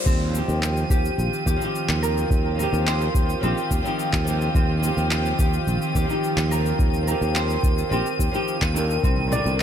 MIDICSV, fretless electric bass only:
0, 0, Header, 1, 2, 480
1, 0, Start_track
1, 0, Key_signature, -3, "major"
1, 0, Tempo, 560748
1, 55, Time_signature, 4, 2, 24, 8
1, 8242, End_track
2, 0, Start_track
2, 0, Title_t, "Fretless electric bass"
2, 0, Program_c, 0, 35
2, 51, Note_on_c, 0, 39, 90
2, 349, Note_off_c, 0, 39, 0
2, 413, Note_on_c, 0, 39, 93
2, 709, Note_off_c, 0, 39, 0
2, 770, Note_on_c, 0, 39, 78
2, 933, Note_off_c, 0, 39, 0
2, 1011, Note_on_c, 0, 34, 84
2, 1093, Note_off_c, 0, 34, 0
2, 1252, Note_on_c, 0, 39, 96
2, 1334, Note_off_c, 0, 39, 0
2, 1615, Note_on_c, 0, 39, 97
2, 1911, Note_off_c, 0, 39, 0
2, 1973, Note_on_c, 0, 39, 91
2, 2270, Note_off_c, 0, 39, 0
2, 2334, Note_on_c, 0, 39, 101
2, 2630, Note_off_c, 0, 39, 0
2, 2692, Note_on_c, 0, 39, 70
2, 2853, Note_off_c, 0, 39, 0
2, 2936, Note_on_c, 0, 34, 82
2, 3016, Note_off_c, 0, 34, 0
2, 3173, Note_on_c, 0, 39, 94
2, 3254, Note_off_c, 0, 39, 0
2, 3535, Note_on_c, 0, 39, 104
2, 3831, Note_off_c, 0, 39, 0
2, 3892, Note_on_c, 0, 39, 102
2, 4189, Note_off_c, 0, 39, 0
2, 4253, Note_on_c, 0, 39, 94
2, 4549, Note_off_c, 0, 39, 0
2, 4612, Note_on_c, 0, 39, 73
2, 4773, Note_off_c, 0, 39, 0
2, 4854, Note_on_c, 0, 34, 80
2, 4935, Note_off_c, 0, 34, 0
2, 5093, Note_on_c, 0, 39, 94
2, 5174, Note_off_c, 0, 39, 0
2, 5450, Note_on_c, 0, 39, 102
2, 5748, Note_off_c, 0, 39, 0
2, 5812, Note_on_c, 0, 39, 97
2, 6109, Note_off_c, 0, 39, 0
2, 6175, Note_on_c, 0, 39, 94
2, 6470, Note_off_c, 0, 39, 0
2, 6533, Note_on_c, 0, 39, 71
2, 6694, Note_off_c, 0, 39, 0
2, 6772, Note_on_c, 0, 34, 85
2, 6854, Note_off_c, 0, 34, 0
2, 7012, Note_on_c, 0, 39, 89
2, 7094, Note_off_c, 0, 39, 0
2, 7374, Note_on_c, 0, 39, 96
2, 7670, Note_off_c, 0, 39, 0
2, 7733, Note_on_c, 0, 36, 94
2, 8030, Note_off_c, 0, 36, 0
2, 8093, Note_on_c, 0, 36, 95
2, 8242, Note_off_c, 0, 36, 0
2, 8242, End_track
0, 0, End_of_file